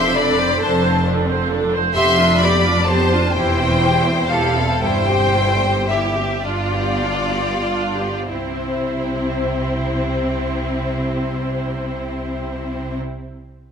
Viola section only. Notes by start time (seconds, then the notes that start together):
Already playing: C4 C5
0.17 D4 A4
0.39 C4 C5
0.61 D4 A4
0.83 C4 C5
1.06 D4 A4
1.27 C4 C5
1.49 D4 A4
1.72 C4 C5
1.95 B3 G4
2.17 D4 F4
2.41 B3 G4
2.65 D4 F4
2.88 B3 G4
3.11 D4 F4
3.34 E4 G4
3.58 C4 E4
3.82 E4 G4
4.05 C4 E4
4.30 E4 G4
4.55 C4 E4
4.81 G3 E4
5.08 C4 G4
5.33 G3 E4
5.60 C4 G4
5.88 G3 E4
6.15 C4 G4
6.44 D4 F4
6.73 B3 G4
7.02 D4 F4
7.32 B3 G4
7.64 D4 F4
7.97 B3 G4
8.28 C4 E4